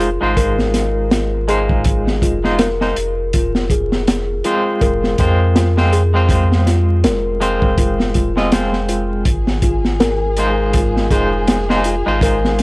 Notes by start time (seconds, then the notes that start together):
Already playing: F1
0.00 F4, closed hi-hat
0.21 G#1 G#3 D#4 F4 C5
0.37 A#4, kick, closed hi-hat
0.59 snare
0.74 snare, closed hi-hat
1.11 F4, snare, closed hi-hat
1.48 G#3 D#4 F4 G#4 C5, closed hi-hat
1.69 kick
1.84 kick, closed hi-hat
2.07 snare
2.22 F1 F4, kick, closed hi-hat
2.44 G#3 D#4 F4 C5, snare
2.59 A#4, snare, closed hi-hat
2.81 G#3 D#4 F4 C5, snare
2.96 F1, closed hi-hat
3.33 F4, kick, closed hi-hat
3.55 snare
3.70 G#4, kick, closed hi-hat
3.92 snare
4.08 snare, closed hi-hat
4.44 G#3 C4 F4 C5, closed hi-hat
4.81 F1 A#4, kick, closed hi-hat
5.04 snare
5.18 F2 G#3 C4 F4 C5, kick, closed hi-hat
5.56 F4, snare, closed hi-hat
5.77 G#3 C4 F4 C5, snare
5.93 G#4, closed hi-hat
6.14 G#3 C4 F4 C5
6.29 kick, closed hi-hat
6.52 snare
6.66 F4, snare, closed hi-hat
7.04 F1 A#4, snare, closed hi-hat
7.41 G#3 C4 F4 C5, closed hi-hat
7.62 kick
7.78 F4, kick, closed hi-hat
8.00 snare
8.14 F4, kick, closed hi-hat
8.37 G#3 C4 F4 D#5, snare
8.52 G#3 C4 F4 C5, snare, closed hi-hat
8.73 snare
8.89 F4, closed hi-hat
9.25 G#1 G#4, kick, closed hi-hat
9.47 snare
9.62 F4, kick, closed hi-hat
9.85 snare
10.00 A#4, snare, closed hi-hat
10.37 G#3 D#4 F4 C5, closed hi-hat
10.73 F4, kick, closed hi-hat
10.97 snare
11.11 F1 G#3 D#4 F4 G#4 C5, kick, closed hi-hat
11.48 snare, closed hi-hat
11.69 G#3 D#4 F4 C5, snare
11.84 F4, closed hi-hat
12.06 G#1 G#3 D#4 F4 C5
12.21 A#4, kick, closed hi-hat
12.44 snare
12.59 closed hi-hat